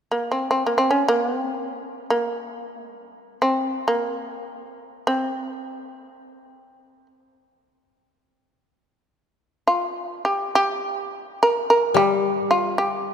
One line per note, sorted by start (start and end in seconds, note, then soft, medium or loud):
0.11 0.30 A#3 soft
0.32 0.47 C4 soft
0.51 0.63 C4 medium
0.66 0.77 A#3 soft
0.78 0.90 C4 medium
0.91 1.06 C#4 medium
1.08 1.26 A#3 medium
1.26 1.37 B3 medium
1.37 2.05 C4 medium
2.10 2.95 A#3 medium
2.95 3.39 G3 medium
3.42 3.84 C4 medium
3.88 5.05 A#3 medium
5.07 7.06 C4 medium
9.67 10.22 F4 soft
10.25 10.52 G4 medium
10.55 11.37 G4 medium
11.43 11.68 A#4 medium
11.70 11.95 A#4 medium
11.94 13.14 G3 soft
11.94 12.48 G4 medium
12.51 12.77 F4 medium
12.78 13.14 G4 medium